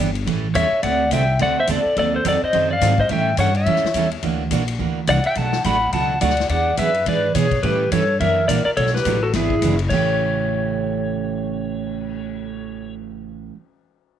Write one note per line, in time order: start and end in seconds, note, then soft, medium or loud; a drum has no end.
0.00 0.26 G1 medium
0.15 ride soft
0.26 0.54 A1 medium
0.26 0.45 E3 medium
0.26 0.46 G3 medium
0.26 0.46 C#4 medium
0.26 0.46 E4 medium
0.26 0.46 A4 medium
0.26 kick soft
0.26 ride medium
0.54 0.70 E2 medium
0.54 0.65 E3 medium
0.54 0.65 G3 medium
0.54 0.65 C#4 medium
0.54 0.66 E4 medium
0.54 0.66 A4 medium
0.54 0.81 C#5 medium
0.54 0.83 E5 medium
0.54 kick soft
0.54 hi-hat pedal medium
0.54 ride medium
0.72 muted upright bass stroke soft
0.83 1.10 D2 medium
0.83 1.02 D3 soft
0.83 1.02 A3 medium
0.83 1.03 C4 medium
0.83 1.03 F#4 medium
0.83 1.03 A4 medium
0.83 1.09 D5 medium
0.83 1.13 F#5 loud
0.83 kick soft
0.83 ride medium
1.11 1.39 C2 medium
1.11 1.22 D3 medium
1.11 1.22 A3 medium
1.11 1.23 C4 medium
1.11 1.23 F#4 medium
1.11 1.23 A4 medium
1.11 1.39 E5 medium
1.11 1.42 G5 medium
1.11 kick soft
1.11 hi-hat pedal medium
1.11 ride medium
1.39 1.67 D2 medium
1.39 1.59 D3 medium
1.39 1.59 A3 medium
1.39 1.59 C4 medium
1.39 1.59 F#4 medium
1.39 1.60 A4 medium
1.39 1.56 D5 medium
1.39 1.58 F#5 medium
1.39 kick soft
1.39 ride medium
1.60 1.69 C5 medium
1.60 1.70 E5 medium
1.67 1.83 E2 medium
1.67 1.79 D3 medium
1.67 1.79 A3 medium
1.67 1.79 C4 medium
1.67 1.79 F#4 medium
1.67 1.95 A4 medium
1.67 1.80 A4 medium
1.67 kick soft
1.67 hi-hat pedal medium
1.67 ride medium
1.72 1.98 D5 medium
1.85 muted upright bass stroke soft
1.96 2.24 D#2 medium
1.96 2.16 D#3 medium
1.96 2.16 F#3 medium
1.96 2.16 C4 medium
1.96 2.17 D#4 medium
1.96 2.13 A4 medium
1.96 2.17 A4 medium
1.96 2.15 D5 loud
1.96 kick soft
1.96 ride medium
2.14 2.25 A4 medium
2.14 2.26 C5 medium
2.25 2.40 F2 medium
2.25 2.35 D#3 medium
2.25 2.35 F#3 medium
2.25 2.36 C4 medium
2.25 2.36 D#4 medium
2.25 2.36 A4 medium
2.25 2.41 A4 medium
2.25 2.43 D5 medium
2.25 kick soft
2.25 hi-hat pedal medium
2.25 ride medium
2.42 2.69 C5 medium
2.42 2.71 D#5 medium
2.42 muted upright bass stroke soft
2.53 2.80 F#2 medium
2.53 2.72 D#3 medium
2.53 2.72 F#3 medium
2.53 2.73 C4 medium
2.53 2.73 D#4 medium
2.53 2.73 A4 medium
2.53 kick soft
2.53 ride medium
2.71 2.97 D5 medium
2.71 3.00 F5 loud
2.81 3.09 G#2 loud
2.81 2.92 D#3 medium
2.81 2.92 F#3 medium
2.81 2.92 C4 medium
2.81 2.92 D#4 medium
2.81 2.92 A4 medium
2.81 kick soft
2.81 snare soft
2.81 hi-hat pedal medium
2.81 ride medium
2.98 3.10 C5 medium
2.98 3.11 D#5 medium
2.98 kick medium
3.09 3.37 A2 medium
3.09 3.29 E3 medium
3.09 3.29 G3 medium
3.09 3.29 C#4 medium
3.09 3.29 E4 medium
3.09 3.29 A4 medium
3.09 3.37 E5 medium
3.09 3.40 G5 loud
3.09 kick soft
3.09 ride medium
3.37 3.65 G2 loud
3.37 3.48 E3 medium
3.37 3.49 G3 medium
3.37 3.49 C#4 medium
3.37 3.49 E4 medium
3.37 3.49 A4 medium
3.37 3.54 C#5 medium
3.37 3.55 F#5 medium
3.37 kick soft
3.37 hi-hat pedal medium
3.37 ride medium
3.55 4.08 C#5 medium
3.55 4.09 E5 medium
3.55 ride soft
3.66 3.82 F#2 medium
3.66 3.85 E3 medium
3.66 3.86 G3 medium
3.66 3.86 C#4 medium
3.66 3.86 E4 medium
3.66 3.86 A4 medium
3.66 kick soft
3.66 ride medium
3.76 snare soft
3.83 muted upright bass stroke soft
3.83 snare soft
3.94 4.22 E2 medium
3.94 4.06 E3 medium
3.94 4.06 G3 medium
3.94 4.06 C#4 medium
3.94 4.06 E4 medium
3.94 4.06 A4 medium
3.94 kick soft
3.94 hi-hat pedal medium
3.94 ride medium
4.11 ride soft
4.22 4.50 D2 medium
4.22 4.42 E3 medium
4.22 4.42 A#3 medium
4.22 4.42 D4 medium
4.22 4.42 F#4 medium
4.22 kick soft
4.22 ride medium
4.51 4.79 A#1 medium
4.51 4.62 E3 medium
4.51 4.62 A#3 medium
4.51 4.62 D4 medium
4.51 4.63 F#4 medium
4.51 kick soft
4.51 hi-hat pedal medium
4.51 ride medium
4.68 ride medium
4.79 5.07 D2 medium
4.79 4.98 E3 medium
4.79 4.98 A#3 medium
4.79 4.99 D4 medium
4.79 4.99 F#4 medium
4.79 kick soft
5.07 5.23 C2 medium
5.07 5.18 E3 medium
5.07 5.19 A#3 medium
5.07 5.19 D4 medium
5.07 5.19 F#4 medium
5.07 5.24 D5 medium
5.07 5.26 F#5 medium
5.07 kick soft
5.07 hi-hat pedal medium
5.07 ride medium
5.24 5.36 E5 medium
5.24 5.37 G5 medium
5.24 ride soft
5.35 5.64 B1 medium
5.35 5.56 B2 medium
5.35 5.56 F#3 medium
5.35 5.56 A3 medium
5.35 5.56 D4 medium
5.35 5.56 F#4 medium
5.35 5.63 F#5 medium
5.35 5.63 A5 loud
5.35 kick soft
5.35 ride medium
5.53 snare soft
5.64 5.92 A1 medium
5.64 5.76 B2 medium
5.64 5.76 F#3 medium
5.64 5.76 A3 medium
5.64 5.76 D4 medium
5.64 5.76 F#4 medium
5.64 5.91 F#5 medium
5.64 5.93 B5 medium
5.64 kick soft
5.64 hi-hat pedal medium
5.64 ride medium
5.93 6.20 C#2 medium
5.93 6.12 B2 medium
5.93 6.13 F#3 medium
5.93 6.13 A3 medium
5.93 6.13 D4 medium
5.93 6.13 F#4 medium
5.93 6.20 F#5 medium
5.93 6.20 A5 loud
5.93 kick soft
5.93 ride medium
6.21 6.49 D2 medium
6.21 6.32 B2 medium
6.21 6.32 F#3 medium
6.21 6.32 A3 medium
6.21 6.32 D4 medium
6.21 6.33 F#4 medium
6.21 6.48 D5 medium
6.21 6.49 F#5 medium
6.21 kick soft
6.21 hi-hat pedal medium
6.21 ride medium
6.30 snare soft
6.37 snare soft
6.37 ride soft
6.49 6.77 E2 medium
6.49 6.69 E3 medium
6.49 6.70 B3 medium
6.49 6.70 D4 medium
6.49 6.70 G#4 medium
6.49 6.77 D5 medium
6.49 6.78 F#5 medium
6.49 kick soft
6.49 ride medium
6.77 7.06 F#2 medium
6.77 6.89 E3 medium
6.77 6.89 B3 medium
6.77 6.89 D4 medium
6.77 6.89 G#4 medium
6.77 7.05 B4 medium
6.77 7.08 E5 medium
6.77 kick soft
6.77 hi-hat pedal medium
6.77 ride medium
6.94 ride soft
7.06 7.34 G#2 medium
7.06 7.26 E3 medium
7.06 7.26 B3 medium
7.06 7.26 D4 medium
7.06 7.27 G#4 medium
7.06 7.34 B4 medium
7.06 7.37 D5 medium
7.06 kick soft
7.06 ride medium
7.35 7.62 B2 medium
7.35 7.46 E3 medium
7.35 7.46 B3 medium
7.35 7.46 D4 medium
7.35 7.62 G#4 medium
7.35 7.46 G#4 medium
7.35 7.64 C#5 medium
7.35 kick soft
7.35 hi-hat pedal medium
7.35 ride medium
7.51 kick medium
7.51 ride soft
7.63 7.91 A2 medium
7.63 7.83 E3 medium
7.63 7.83 G3 medium
7.63 7.83 C#4 medium
7.63 7.83 E4 medium
7.63 7.90 G4 medium
7.63 7.83 A4 medium
7.63 7.92 B4 medium
7.63 kick soft
7.63 ride medium
7.92 8.19 G2 medium
7.92 8.02 E3 medium
7.92 8.03 G3 medium
7.92 8.03 C#4 medium
7.92 8.03 E4 medium
7.92 8.03 A4 medium
7.92 8.19 A4 medium
7.92 8.20 C#5 medium
7.92 kick soft
7.92 hi-hat pedal medium
7.92 ride medium
8.20 8.48 F#2 medium
8.20 8.40 E3 medium
8.20 8.40 A#3 medium
8.20 8.40 D4 medium
8.20 8.40 F#4 medium
8.20 8.47 A#4 medium
8.20 8.50 E5 medium
8.20 kick soft
8.20 ride medium
8.48 8.64 A#1 loud
8.48 8.60 E3 medium
8.48 8.60 A#3 medium
8.48 8.60 D4 medium
8.48 8.60 F#4 medium
8.48 8.64 A#4 medium
8.48 8.64 D5 medium
8.48 kick soft
8.48 hi-hat pedal medium
8.48 ride medium
8.65 8.71 A#4 medium
8.65 8.70 D5 medium
8.65 muted upright bass stroke soft
8.77 9.04 B1 medium
8.77 8.96 B2 medium
8.77 8.97 F#3 medium
8.77 8.97 A3 medium
8.77 8.97 D4 medium
8.77 8.97 F#4 medium
8.77 8.93 A4 medium
8.77 8.94 C#5 medium
8.77 kick soft
8.77 ride medium
8.86 snare soft
8.95 9.21 G4 medium
8.95 9.24 B4 medium
8.95 snare soft
9.05 9.33 A1 medium
9.05 9.17 B2 medium
9.05 9.17 F#3 medium
9.05 9.17 A3 medium
9.05 9.17 D4 medium
9.05 9.17 F#4 medium
9.05 kick soft
9.05 hi-hat pedal medium
9.05 ride medium
9.23 9.34 F#4 medium
9.23 9.34 A4 medium
9.33 9.61 G#1 medium
9.33 9.53 E3 medium
9.33 9.54 B3 medium
9.33 9.54 D4 medium
9.33 9.77 E4 medium
9.33 9.80 G#4 medium
9.33 9.54 G#4 medium
9.33 kick soft
9.33 snare soft
9.33 ride medium
9.50 kick medium
9.62 9.90 F#1 loud
9.62 9.74 E3 medium
9.62 9.74 B3 medium
9.62 9.74 D4 medium
9.62 9.74 G#4 medium
9.62 kick soft
9.62 hi-hat pedal medium
9.62 ride medium
9.79 ride medium
9.89 13.49 A1 medium
9.89 13.53 A2 medium
9.89 13.53 C#3 medium
9.89 13.55 E3 medium
9.89 13.55 A3 medium
9.89 13.56 C#4 medium
9.89 12.94 C#5 medium
9.89 kick medium
9.89 crash medium
9.94 13.56 G4 medium
10.07 cymbal swell soft